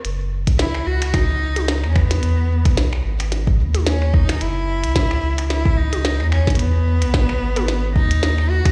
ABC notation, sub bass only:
X:1
M:4/4
L:1/16
Q:"Swing 16ths" 1/4=110
K:G#phr
V:1 name="Sub bass" clef=bass
F,,,3 C,,3 C,,6- C,, E,,3 | E,,3 B,,,3 G,,,4 D,,4- D,, z | F,,,3 C,,3 C,,6- C,, E,,3 | E,,3 B,,,3 G,,,4 D,,4- D,, z |]